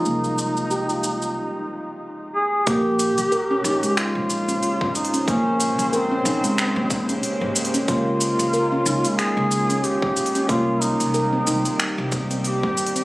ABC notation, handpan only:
X:1
M:4/4
L:1/16
Q:"Swing 16ths" 1/4=92
K:Bbdor
V:1 name="Handpan"
B,4 G F3 z8 | B,4 B D E A, z3 D4 D | B,4 B D E A, z3 D4 D | B,4 B D E A, z3 D4 D |
B,4 B C E G, z3 C4 C |]